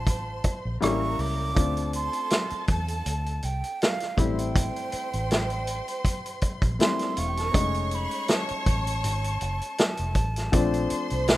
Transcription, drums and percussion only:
0.07 kick, closed hi-hat
0.44 kick, closed hi-hat
0.82 cross-stick, closed hi-hat
1.03 cross-stick
1.19 open hi-hat
1.57 kick, closed hi-hat
1.77 closed hi-hat
1.93 closed hi-hat
2.13 closed hi-hat
2.30 snare, closed hi-hat
2.50 closed hi-hat
2.68 kick, closed hi-hat
2.88 closed hi-hat
3.06 closed hi-hat
3.26 closed hi-hat
3.42 closed hi-hat
3.64 closed hi-hat
3.82 snare, closed hi-hat
4.00 snare, closed hi-hat
4.18 kick, closed hi-hat
4.39 closed hi-hat
4.56 kick, closed hi-hat
4.76 closed hi-hat
4.92 closed hi-hat
5.13 closed hi-hat
5.31 snare, closed hi-hat
5.50 closed hi-hat
5.67 closed hi-hat
5.88 closed hi-hat
6.05 kick, closed hi-hat
6.26 closed hi-hat
6.41 kick, closed hi-hat
6.62 kick, closed hi-hat
6.80 snare, closed hi-hat
6.99 snare, closed hi-hat
7.17 closed hi-hat
7.37 snare, closed hi-hat
7.54 kick, closed hi-hat
7.74 closed hi-hat
7.91 closed hi-hat
8.11 closed hi-hat
8.28 snare, closed hi-hat
8.49 closed hi-hat
8.66 kick, closed hi-hat
8.87 closed hi-hat
9.04 closed hi-hat
9.24 closed hi-hat
9.41 closed hi-hat
9.61 closed hi-hat
9.78 snare, closed hi-hat
9.97 closed hi-hat
10.15 kick, closed hi-hat
10.36 snare, closed hi-hat
10.53 kick, closed hi-hat
10.74 closed hi-hat
10.90 closed hi-hat
11.10 closed hi-hat
11.28 snare, closed hi-hat

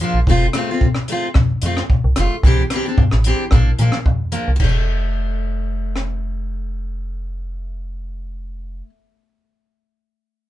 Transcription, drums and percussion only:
0.27 kick
0.53 cross-stick, closed hi-hat
0.81 kick
0.95 cross-stick
1.08 closed hi-hat
1.34 kick, cross-stick
1.62 closed hi-hat
1.77 cross-stick
1.90 kick
2.16 cross-stick, closed hi-hat
2.43 kick
2.70 cross-stick, closed hi-hat
2.98 kick
3.11 cross-stick
3.24 closed hi-hat
3.51 kick, cross-stick
3.78 closed hi-hat
3.92 cross-stick
4.06 kick
4.32 closed hi-hat
4.60 kick, crash
5.96 cross-stick

